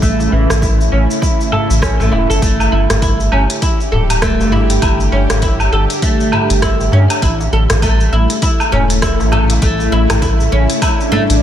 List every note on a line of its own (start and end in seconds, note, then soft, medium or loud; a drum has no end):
0.00 0.28 A1 loud
0.00 2.38 C#3 medium
0.00 2.38 A3 medium
0.00 0.31 A3 medium
0.00 2.38 E4 medium
0.00 kick loud
0.00 shaker medium
0.20 darbuka ka medium
0.20 shaker soft
0.32 0.47 A1 medium
0.32 0.49 E3 medium
0.50 0.89 A1 medium
0.50 cross-stick medium
0.50 darbuka ka soft
0.50 darbuka tek medium
0.50 darbuka dum medium
0.50 shaker medium
0.62 0.79 E4 medium
0.62 kick loud
0.62 shaker medium
0.81 shaker soft
0.92 1.07 A1 medium
0.92 1.02 C#4 medium
1.11 shaker medium
1.22 1.39 E4 medium
1.22 kick loud
1.22 shaker medium
1.41 shaker soft
1.52 1.68 A4 loud
1.52 darbuka dum medium
1.70 1.99 A1 medium
1.70 shaker medium
1.82 1.98 C#4 medium
1.82 kick loud
1.82 cross-stick medium
1.82 shaker medium
2.00 2.10 A1 medium
2.00 2.11 A3 medium
2.00 darbuka ka soft
2.00 darbuka dum medium
2.00 shaker soft
2.12 2.27 E1 medium
2.12 2.29 E4 medium
2.12 darbuka tek medium
2.30 2.40 G1 medium
2.30 2.41 A4 medium
2.30 darbuka ka soft
2.30 shaker medium
2.42 2.68 G1 medium
2.42 7.18 D3 medium
2.42 2.71 A3 medium
2.42 7.18 G4 medium
2.42 kick medium
2.42 closed hi-hat soft
2.42 shaker medium
2.60 darbuka ka medium
2.60 low woodblock medium
2.60 shaker soft
2.72 2.87 G1 medium
2.72 2.89 E4 medium
2.90 3.29 G1 medium
2.90 cross-stick medium
2.90 closed hi-hat medium
2.90 darbuka tek medium
2.90 darbuka dum medium
2.90 shaker medium
3.02 3.19 E4 medium
3.02 kick loud
3.02 closed hi-hat soft
3.02 shaker medium
3.20 shaker soft
3.32 3.47 G1 medium
3.32 3.42 C#4 medium
3.32 low woodblock medium
3.50 closed hi-hat soft
3.50 shaker medium
3.62 3.79 E4 medium
3.62 kick medium
3.62 closed hi-hat soft
3.62 shaker medium
3.80 darbuka ka soft
3.80 shaker soft
3.92 4.41 D1 loud
3.92 4.02 A4 medium
3.92 darbuka dum medium
4.10 closed hi-hat soft
4.10 darbuka ka soft
4.10 low woodblock medium
4.10 shaker medium
4.22 4.51 A3 medium
4.22 kick loud
4.22 cross-stick medium
4.22 closed hi-hat soft
4.22 shaker medium
4.40 4.79 G1 medium
4.40 darbuka tek medium
4.40 shaker soft
4.52 4.69 E4 medium
4.52 darbuka tek medium
4.52 darbuka dum medium
4.70 closed hi-hat medium
4.70 darbuka ka soft
4.70 darbuka tek soft
4.70 shaker medium
4.82 5.08 G1 medium
4.82 4.99 E4 medium
4.82 kick loud
4.82 closed hi-hat soft
4.82 low woodblock medium
4.82 shaker soft
5.00 darbuka ka medium
5.00 shaker soft
5.12 5.27 G1 medium
5.12 5.22 C#4 medium
5.30 5.69 G1 medium
5.30 cross-stick medium
5.30 closed hi-hat medium
5.30 darbuka tek medium
5.30 darbuka dum medium
5.30 shaker medium
5.42 5.59 E4 medium
5.42 kick loud
5.42 closed hi-hat soft
5.42 shaker medium
5.60 low woodblock medium
5.60 shaker soft
5.72 5.87 G1 medium
5.72 5.83 A4 medium
5.90 closed hi-hat soft
5.90 shaker medium
6.02 6.31 A3 medium
6.02 kick loud
6.02 closed hi-hat soft
6.02 shaker medium
6.20 shaker soft
6.32 6.49 E4 medium
6.32 darbuka dum medium
6.32 low woodblock medium
6.50 6.89 G1 medium
6.50 closed hi-hat soft
6.50 shaker medium
6.62 6.79 E4 medium
6.62 kick medium
6.62 cross-stick medium
6.62 closed hi-hat soft
6.62 shaker medium
6.80 darbuka ka soft
6.80 darbuka dum medium
6.80 shaker soft
6.92 7.07 G2 loud
6.92 7.03 C#4 medium
6.92 darbuka tek medium
7.10 closed hi-hat medium
7.10 darbuka ka soft
7.10 low woodblock medium
7.10 shaker medium
7.22 7.48 A1 medium
7.22 11.43 C#3 medium
7.22 11.43 A3 medium
7.22 11.43 E4 medium
7.22 7.39 E4 medium
7.22 kick loud
7.22 closed hi-hat soft
7.22 shaker soft
7.40 darbuka ka medium
7.40 shaker soft
7.52 7.67 A1 medium
7.52 7.63 A4 medium
7.70 8.09 A1 medium
7.70 cross-stick medium
7.70 closed hi-hat medium
7.70 darbuka tek medium
7.70 darbuka dum medium
7.70 shaker medium
7.82 8.11 A3 medium
7.82 kick loud
7.82 closed hi-hat soft
7.82 low woodblock medium
7.82 shaker soft
8.00 shaker soft
8.12 8.27 A1 medium
8.12 8.29 E4 medium
8.30 closed hi-hat soft
8.30 shaker medium
8.42 8.59 E4 medium
8.42 kick loud
8.42 closed hi-hat soft
8.42 shaker medium
8.60 darbuka ka soft
8.60 low woodblock medium
8.60 shaker soft
8.72 9.22 E1 loud
8.72 8.82 C#4 medium
8.72 darbuka dum medium
8.90 closed hi-hat medium
8.90 darbuka ka soft
8.90 shaker medium
9.02 9.19 E4 medium
9.02 kick medium
9.02 cross-stick medium
9.02 closed hi-hat soft
9.02 shaker medium
9.20 9.59 A1 medium
9.20 darbuka tek medium
9.20 shaker soft
9.32 9.42 A4 medium
9.32 darbuka tek medium
9.32 darbuka dum medium
9.32 low woodblock medium
9.50 closed hi-hat medium
9.50 darbuka ka soft
9.50 darbuka tek medium
9.50 shaker medium
9.62 9.88 A1 medium
9.62 9.91 A3 medium
9.62 kick loud
9.62 closed hi-hat soft
9.62 shaker soft
9.79 darbuka ka medium
9.79 shaker soft
9.92 10.07 A1 medium
9.92 10.09 E4 medium
10.10 10.49 A1 medium
10.10 cross-stick medium
10.10 closed hi-hat medium
10.10 darbuka ka soft
10.10 darbuka tek medium
10.10 darbuka dum medium
10.10 low woodblock medium
10.10 shaker medium
10.22 10.39 E4 medium
10.22 kick loud
10.22 closed hi-hat soft
10.22 shaker medium
10.40 shaker soft
10.52 10.67 A1 medium
10.52 10.62 C#4 medium
10.70 closed hi-hat medium
10.70 shaker medium
10.82 10.99 E4 medium
10.82 kick loud
10.82 closed hi-hat soft
10.82 swell medium
10.82 low woodblock medium
10.82 shaker soft
11.00 shaker soft
11.12 11.22 A3 loud
11.12 darbuka dum medium
11.29 11.41 A1 medium
11.29 closed hi-hat medium
11.29 darbuka ka soft
11.29 shaker medium